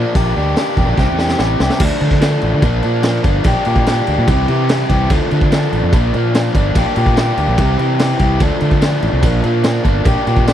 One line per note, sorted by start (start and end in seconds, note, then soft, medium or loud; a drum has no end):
0.00 0.14 F3 medium
0.00 0.14 A#3 medium
0.00 0.14 D4 loud
0.15 0.32 A#1 medium
0.15 0.35 A#3 medium
0.15 0.36 D4 medium
0.15 0.36 G4 loud
0.15 kick loud
0.15 open hi-hat medium
0.36 0.53 D2 medium
0.36 0.55 A#3 medium
0.36 0.56 D4 medium
0.36 0.56 G4 medium
0.56 0.76 A#3 medium
0.56 0.76 D4 loud
0.56 0.77 G4 loud
0.56 snare loud
0.56 open hi-hat medium
0.77 0.86 E1 medium
0.77 0.97 A#3 medium
0.77 0.97 D4 medium
0.77 0.97 G4 medium
0.77 kick medium
0.89 0.97 A#1 medium
0.97 1.06 C2 loud
0.97 1.17 G3 loud
0.97 1.17 C4 loud
0.97 1.18 E4 medium
0.97 1.18 G4 loud
0.97 kick medium
0.97 snare medium
1.09 1.34 E2 medium
1.18 1.37 G3 medium
1.18 1.38 C4 medium
1.18 1.38 E4 loud
1.18 1.39 G4 medium
1.18 snare medium
1.28 snare medium
1.39 1.56 A1 medium
1.39 1.59 G3 loud
1.39 1.59 C4 medium
1.39 1.59 E4 medium
1.39 1.60 G4 loud
1.39 snare medium
1.60 1.69 C2 medium
1.60 1.79 G3 medium
1.60 1.79 C4 medium
1.60 1.80 E4 medium
1.60 1.80 G4 medium
1.60 snare medium
1.70 snare medium
1.80 1.89 D2 loud
1.80 2.19 F3 medium
1.80 2.02 A3 medium
1.80 2.00 D4 loud
1.80 kick loud
1.80 crash loud
1.80 crash medium
2.01 2.35 D3 medium
2.01 2.21 A3 medium
2.01 2.22 D4 medium
2.01 crash medium
2.11 kick medium
2.21 2.61 F3 medium
2.21 2.62 A3 medium
2.21 2.63 D4 medium
2.21 snare loud
2.21 crash medium
2.41 2.51 A1 medium
2.41 crash medium
2.54 2.62 D3 medium
2.62 2.80 A#1 loud
2.62 3.02 F3 medium
2.62 2.85 A#3 loud
2.62 2.82 D4 loud
2.62 kick loud
2.62 crash medium
2.83 3.18 A#2 medium
2.83 3.04 A#3 medium
2.83 3.05 D4 medium
2.83 crash medium
3.03 3.44 F3 medium
3.03 3.25 A#3 medium
3.03 3.22 D4 medium
3.03 snare loud
3.03 crash medium
3.24 3.41 G1 loud
3.24 3.43 A#3 medium
3.24 3.44 D4 medium
3.24 kick medium
3.24 crash medium
3.44 3.54 A#1 loud
3.44 3.84 A#3 medium
3.44 3.67 D4 medium
3.44 3.64 G4 loud
3.44 kick loud
3.44 crash medium
3.65 4.00 A#2 medium
3.65 3.86 D4 medium
3.65 3.87 G4 medium
3.65 crash medium
3.76 kick medium
3.86 4.26 A#3 medium
3.86 4.27 D4 medium
3.86 4.27 G4 medium
3.86 snare medium
3.86 crash medium
4.07 4.16 D2 medium
4.07 crash medium
4.18 4.27 A#2 loud
4.28 4.45 C2 loud
4.28 4.67 E3 loud
4.28 4.50 C4 medium
4.28 4.49 E4 loud
4.28 4.47 G4 loud
4.28 kick loud
4.28 crash medium
4.48 4.83 C3 medium
4.48 4.68 C4 medium
4.48 4.69 E4 medium
4.48 4.70 G4 medium
4.48 crash medium
4.68 5.09 E3 medium
4.68 4.91 C4 medium
4.68 4.90 E4 medium
4.68 4.88 G4 medium
4.68 snare loud
4.68 crash medium
4.89 5.07 C2 medium
4.89 5.10 C4 medium
4.89 5.10 E4 medium
4.89 5.09 G4 medium
4.89 kick medium
4.89 crash medium
5.09 5.19 D2 loud
5.09 5.49 F3 loud
5.09 5.32 A3 loud
5.09 5.29 D4 medium
5.09 kick loud
5.09 crash medium
5.30 5.66 D3 medium
5.30 5.51 A3 medium
5.30 5.52 D4 medium
5.30 crash medium
5.41 kick medium
5.51 5.91 F3 medium
5.51 5.92 A3 medium
5.51 5.93 D4 medium
5.51 snare loud
5.51 crash medium
5.72 5.81 A1 medium
5.72 crash medium
5.83 5.92 F2 medium
5.92 6.10 A#1 loud
5.92 6.32 F3 medium
5.92 6.14 A#3 loud
5.92 6.12 D4 loud
5.92 kick loud
5.92 crash medium
6.13 6.48 A#2 medium
6.13 6.34 A#3 medium
6.13 6.35 D4 medium
6.13 crash medium
6.34 6.74 F3 medium
6.34 6.56 A#3 medium
6.34 6.53 D4 medium
6.34 snare loud
6.34 crash medium
6.55 6.72 G1 medium
6.55 6.73 A#3 medium
6.55 6.74 D4 medium
6.55 kick medium
6.55 crash medium
6.75 6.84 A#1 loud
6.75 7.15 A#3 loud
6.75 6.97 D4 loud
6.75 6.94 G4 loud
6.75 kick loud
6.75 crash medium
6.95 7.31 A#2 medium
6.95 7.17 D4 soft
6.95 7.18 G4 medium
6.95 crash medium
7.06 kick medium
7.17 7.57 A#3 medium
7.17 7.57 D4 medium
7.17 7.58 G4 medium
7.17 snare medium
7.17 crash medium
7.37 7.46 D2 medium
7.37 crash medium
7.48 7.56 A#1 medium
7.57 7.75 C2 loud
7.57 7.97 E3 loud
7.57 7.79 C4 loud
7.57 7.78 E4 loud
7.57 7.77 G4 loud
7.57 kick loud
7.57 crash medium
7.78 8.13 C3 medium
7.78 7.98 C4 medium
7.78 7.99 E4 medium
7.78 8.00 G4 medium
7.78 crash medium
7.99 8.39 E3 medium
7.99 8.20 C4 medium
7.99 8.19 E4 medium
7.99 8.18 G4 medium
7.99 snare loud
7.99 crash medium
8.19 8.37 C2 medium
8.19 8.40 C4 medium
8.19 8.40 E4 medium
8.19 8.39 G4 medium
8.19 kick medium
8.19 crash medium
8.39 8.49 D2 loud
8.39 8.80 F3 medium
8.39 8.61 A3 medium
8.39 8.59 D4 loud
8.39 kick loud
8.39 crash medium
8.60 8.96 D3 medium
8.60 8.81 A3 medium
8.60 8.82 D4 medium
8.60 crash medium
8.71 kick medium
8.81 9.21 F3 medium
8.81 9.22 A3 medium
8.81 9.23 D4 medium
8.81 snare loud
8.81 crash medium
9.02 9.11 A1 medium
9.02 crash medium
9.13 9.22 C2 medium
9.22 9.40 A#1 loud
9.22 9.62 F3 loud
9.22 9.44 A#3 loud
9.22 9.41 D4 loud
9.22 kick loud
9.22 crash medium
9.42 9.79 A#2 medium
9.42 9.64 A#3 medium
9.42 9.65 D4 medium
9.42 crash medium
9.64 10.04 F3 medium
9.64 9.85 A#3 medium
9.64 9.83 D4 medium
9.64 snare loud
9.64 crash medium
9.84 10.02 G1 medium
9.84 10.03 A#3 medium
9.84 10.04 D4 medium
9.84 kick medium
9.84 crash medium
10.04 10.14 A#1 loud
10.04 10.44 A#3 loud
10.04 10.27 D4 medium
10.04 10.24 G4 loud
10.04 kick loud
10.04 crash medium
10.25 10.53 A#2 medium
10.25 10.46 D4 medium
10.25 10.47 G4 medium
10.25 crash medium
10.37 kick medium
10.45 10.53 A#3 medium
10.45 10.53 D4 medium
10.45 10.53 G4 medium
10.45 snare loud
10.45 crash medium